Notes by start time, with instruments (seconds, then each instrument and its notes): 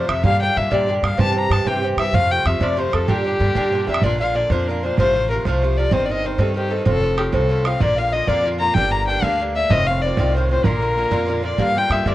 Already playing: fiddle C5
0.08 upright bass F2, bouzouki C3 F3 A3 F4, fiddle E5, flute E5, bodhran
0.24 upright bass G2, bouzouki A#2 D3 D4 G4, flute F5, fiddle F5, bodhran
0.40 bouzouki A#2 D3 D4 G4, fiddle G5, bodhran
0.55 upright bass G2, bouzouki A#2 D3 D4 G4, fiddle E5
0.71 upright bass G2, bouzouki A#2 D3 D4 G4, flute D5, fiddle D5, bodhran
0.87 bouzouki A#2 D3 D4 G4, bodhran
1.02 upright bass G2, bouzouki A#2 D3 D4 G4, flute F5, fiddle F5, bodhran
1.17 upright bass G2, bouzouki C3 E3 C4 G4, flute A5, fiddle A5, bodhran
1.32 bouzouki C3 E3 C4, fiddle A5, bodhran
1.37 bouzouki G4, fiddle A#5
1.50 upright bass G2, bouzouki C3 E3 C4 G4, flute A5, fiddle A5, bodhran
1.64 upright bass G2, bouzouki C3 E3 C4 G4, flute G5, fiddle G5, bodhran
1.82 bouzouki C3 E3 C4 G4, bodhran
1.97 upright bass G2, bouzouki C3 E3 C4 G4, flute E5, fiddle E5, bodhran
2.12 upright bass F2, bouzouki C3 F3 A3 F4, flute F5, fiddle F5, bodhran
2.29 bouzouki C3 F3 A3 F4, fiddle G5
2.45 upright bass F2, bouzouki C3 F3 A3 F4, fiddle E5, bodhran
2.59 upright bass F2, bouzouki C3 F3 A3 F4, flute D5, fiddle D5, bodhran
2.76 bouzouki C3 F3 A3 F4, flute C5, fiddle C5, bodhran
2.91 upright bass F2, bouzouki C3 F3 A3 F4, flute A4, fiddle A4, bodhran
3.08 upright bass G2, bouzouki A#2 D3 D4 G4, flute G4, fiddle G4, bodhran
3.24 bouzouki A#2 D3 D4 G4, bodhran
3.39 upright bass G2, bouzouki A#2 D3 D4 G4
3.55 upright bass G2, bouzouki A#2 D3 D4 G4, bodhran
3.71 bouzouki A#2 D3 D4 G4, bodhran
3.88 upright bass F2, bouzouki A#2 D3 D4 G4, fiddle E5
3.94 bodhran
4.02 upright bass A#1, bouzouki A#2 D3 D4 F4, fiddle D5, bodhran
4.19 bouzouki A#2 D3 D4 F4, fiddle F5, bodhran
4.34 bouzouki A#2 D3 D4 F4, fiddle D5
4.50 upright bass F2, bouzouki A#2 D3 D4 F4, fiddle C5, bodhran
4.67 bouzouki A#2 D3 D4 F4, fiddle A#4
4.83 bouzouki A#2 D3 D4 F4, fiddle C5
4.98 upright bass A1, bouzouki C3 F3 A3 F4, fiddle C5, bodhran
5.14 bouzouki C3 F3 A3 F4, bodhran
5.30 bouzouki C3 F3 A3 F4, fiddle A#4
5.45 upright bass C2, bouzouki C3 F3 A3 F4, fiddle C5, bodhran
5.62 bouzouki C3 F3 A3 F4
5.77 bouzouki C3 F3 A3 F4, fiddle D5
5.91 upright bass G1, bouzouki G2 D#3 C4 D#4, fiddle C5, bodhran
6.05 bouzouki G2, fiddle D5, bodhran
6.10 bouzouki D#3 C4 D#4, fiddle D#5
6.23 bouzouki G2 D#3 C4 D#4, fiddle C5
6.38 upright bass G2, bouzouki G2 D#3 C4 D#4, fiddle A4, bodhran
6.54 bouzouki G2 D#3 C4 D#4, fiddle G4
6.68 bouzouki G2 D#3 C4 D#4, fiddle A4
6.85 upright bass F1, bouzouki A2 F3 C4 F4, fiddle A4, bodhran
7.01 bouzouki A2 F3 C4 F4, bodhran
7.17 bouzouki A2 F3 C4 F4, fiddle G4, bodhran
7.32 upright bass C2, bouzouki A2 F3 C4 F4, fiddle A4, bodhran
7.49 bouzouki A2 F3 C4 F4
7.65 bouzouki A2 F3 C4 F4, fiddle F5, bodhran
7.80 upright bass A#1, bouzouki A#2 D3 A#3 F4, flute D5, fiddle D5, bodhran
7.95 bouzouki A#2 D3 A#3 F4, flute F5, fiddle F5, bodhran
8.12 bouzouki A#2 D3 A#3 F4, flute D#5, fiddle D#5
8.27 upright bass F2, bouzouki A#2 D3 A#3 F4, flute D5, fiddle D5, bodhran
8.44 bouzouki A#2 D3 A#3 F4
8.59 bouzouki A#2 D3 A#3 F4, fiddle A#5, flute A#5
8.74 upright bass G1, bouzouki G2 D3 A#3 D4, fiddle G5, flute G5, bodhran
8.91 bouzouki G2 D3 A#3 D4, fiddle A#5, flute A#5, bodhran
9.07 bouzouki G2 D3 A#3 D4, fiddle G5, flute G5
9.22 upright bass D2, bouzouki G2 D3 A#3 D4, flute F5, fiddle F5, bodhran
9.41 bouzouki G2 D3 A#3 D4
9.55 bouzouki G2 D3 A#3 D4, flute E5, fiddle E5
9.69 upright bass F1, bouzouki A2 D#3 C4 F4, flute D#5, fiddle D#5, bodhran
9.86 bouzouki A2 D#3 C4, flute F5, fiddle F5, bodhran
9.90 bouzouki F4
10.01 bouzouki A2 D#3 C4, flute D5, fiddle D5
10.06 bouzouki F4
10.17 upright bass C2, bouzouki A2 D#3 C4 F4, bodhran
10.33 bouzouki A2 D#3 C4, flute C5, fiddle C5
10.38 bouzouki F4
10.48 bouzouki A2 D#3 C4, flute C5, fiddle C5
10.52 bouzouki F4
10.64 upright bass A#1, bouzouki A#2 D3 A#3 F4, flute A#4, fiddle A#4, bodhran
10.80 bouzouki A#2 D3 A#3 F4, bodhran
10.96 bouzouki A#2 D3 A#3 F4
11.11 upright bass F2, bouzouki A#2 D3 A#3 F4, bodhran
11.26 bouzouki A#2 D3 A#3 F4
11.42 bouzouki A#2 D3 A#3 F4, flute D5, fiddle D5
11.58 bouzouki G2 D3 A#3 F4, upright bass G2, flute F5, fiddle F5, bodhran
11.75 bouzouki G2 D3 A#3 F4, flute G5, fiddle G5, bodhran
11.90 upright bass G2, bouzouki G2 D3 A#3 F4, fiddle E5, bodhran
12.05 upright bass G2, bouzouki G2 D3 A#3 F4, flute D5, fiddle D5, bodhran